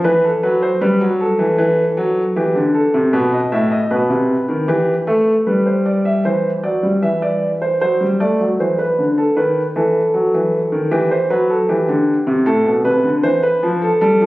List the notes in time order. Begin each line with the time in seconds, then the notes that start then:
0.04 E3 B4
0.24 A4
0.43 F#3 B4
0.62 C5
0.81 G3 B4
1.01 F#3
1.20 A4
1.39 E3
1.58 E3
1.97 F#3
2.36 E3 G4
2.55 D3
2.74 A4
2.94 C3
3.13 B2 B4
3.33 D#5
3.52 A2 E5
3.71 D#5
3.91 B2 B4
4.10 C3
4.48 D#3
4.68 E3 G4
5.07 A3 A4
5.47 G3 B4
5.66 C5
5.86 D5
6.05 E5
6.25 E3 C5
6.63 F#3 D5
6.83 G3
7.02 E3 E5
7.22 D5
7.62 C5
7.81 F#3 C5
8.01 G3
8.20 A3 D5
8.40 F#3
8.60 E3 C5
8.79 B4
8.98 D3
9.18 A4
9.37 D#3 B4
9.76 E3 A4
10.14 F#3
10.34 E3
10.72 D#3
10.91 E3 G4
11.11 C5
11.30 F#3 B4
11.50 A4
11.69 E3 G4
11.88 D3
12.27 C3
12.46 A2 A4
12.66 B2
12.85 C3 B4
13.04 D3
13.23 E3 C5
13.43 B4
13.63 F3
13.82 A4
14.01 G3 A4
14.21 F3